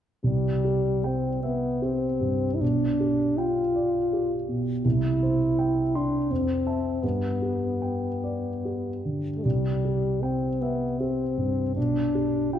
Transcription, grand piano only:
0.24 2.57 C2 soft
0.64 1.28 G4 soft
1.04 1.67 G5 soft
1.43 2.06 E5 soft
1.82 2.45 G4 soft
2.21 2.61 G2 soft
2.61 4.80 B1 soft
3.00 3.60 G4 soft
3.38 3.98 G5 soft
3.76 4.34 D5 soft
4.13 4.71 G4 soft
4.49 4.85 B2 soft
4.85 6.26 C2 soft
5.23 5.81 C5 soft
5.59 6.16 G5 soft
5.95 6.31 C6 soft
6.31 7.01 F2 soft
6.67 7.00 E5 soft
6.67 7.00 A5 soft
7.03 9.40 G2 soft
7.42 8.07 G4 soft
7.82 8.48 G5 soft
8.24 8.89 D5 soft
8.65 9.29 G4 soft
9.05 9.45 D3 soft
9.45 11.73 C2 soft
9.85 10.47 G4 soft
10.23 10.85 G5 soft
10.62 11.23 E5 soft
11.00 11.61 G4 soft
11.38 11.76 G2 soft
11.77 12.59 B1 soft
12.15 12.59 G4 soft
12.53 12.59 G5 soft

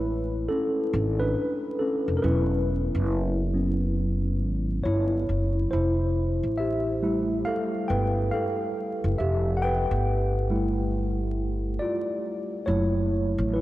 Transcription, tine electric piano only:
0.00 2.25 G#3 soft
0.00 2.25 A3 soft
0.00 2.24 E4 medium
0.00 0.52 B4 medium
0.00 2.25 C#5 medium
0.49 1.17 C#4 medium
0.49 1.22 A4 medium
1.20 1.76 D4 medium
1.20 1.75 B4 medium
1.79 2.16 C#4 medium
1.79 2.19 A4 medium
2.17 2.23 A#4 medium
2.22 2.85 F#3 soft
2.22 2.85 B3 soft
2.22 2.86 C#4 medium
2.22 4.81 E4 medium
2.22 4.91 B4 medium
3.53 3.93 F#3 soft
3.53 3.93 B3 soft
3.53 3.93 C#4 medium
4.84 5.68 E4 medium
4.84 5.73 C#5 medium
5.71 6.55 E4 medium
5.71 6.54 C5 medium
6.58 7.42 G4 medium
6.58 7.41 E5 medium
7.02 7.64 G3 medium
7.02 7.64 A3 soft
7.02 7.65 E4 medium
7.45 7.86 A4 medium
7.45 7.90 F5 medium
7.88 8.30 B4 medium
7.88 8.33 G5 loud
8.31 9.16 A4 medium
8.31 9.15 F5 medium
9.18 9.55 G4 medium
9.18 9.54 E5 medium
9.57 9.62 F#5 medium
9.62 11.77 B4 medium
9.62 11.76 G5 loud
10.50 12.63 G3 medium
10.50 12.63 A3 medium
10.50 12.63 E4 medium
11.80 12.64 F4 medium
11.80 12.69 D5 medium
12.66 13.61 F#3 medium
12.66 13.61 A3 soft
12.66 13.50 E4 medium
12.66 13.56 C#5 medium
13.53 13.61 E4 medium
13.53 13.61 B4 medium

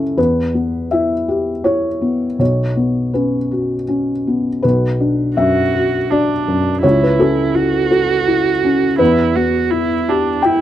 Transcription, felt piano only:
0.00 0.13 C#2 soft
0.00 0.20 C#4 soft
0.00 0.20 E4 soft
0.00 0.20 A4 soft
0.00 0.20 E5 soft
0.00 0.20 A5 medium
0.17 2.36 E2 soft
0.17 0.87 B4 medium
0.54 1.14 B3 soft
0.91 1.51 E4 soft
0.91 1.61 E5 medium
1.28 1.87 G4 soft
1.64 2.24 E4 soft
1.64 2.35 C#5 medium
2.02 2.39 B3 soft
2.39 4.59 B1 soft
2.39 3.10 C#5 soft
2.76 3.36 B3 soft
3.13 3.73 C#4 soft
3.13 3.84 B4 soft
3.51 4.11 F#4 soft
3.88 4.48 C#4 soft
4.27 4.64 B3 soft
4.62 6.80 B1 soft
4.62 5.34 B4 medium
5.00 5.60 D4 soft
5.37 5.96 F#2 soft
5.37 6.06 E5 medium
5.74 6.32 F#4 soft
6.12 6.69 D4 soft
6.12 6.79 D5 soft
6.48 6.83 F#2 soft
6.83 8.96 C#2 soft
6.83 7.00 C#5 medium
7.03 7.19 B4 medium
7.19 7.77 C#4 soft
7.19 7.89 A4 medium
7.55 8.13 E4 soft
7.91 8.49 A4 soft
8.28 8.85 E4 soft
8.64 9.00 C#4 soft
8.98 10.61 E2 medium
8.98 10.40 B4 medium
9.36 9.93 B3 soft
9.71 10.30 E4 soft
10.09 10.61 G4 soft
10.42 10.61 E4 soft
10.42 10.61 G5 medium

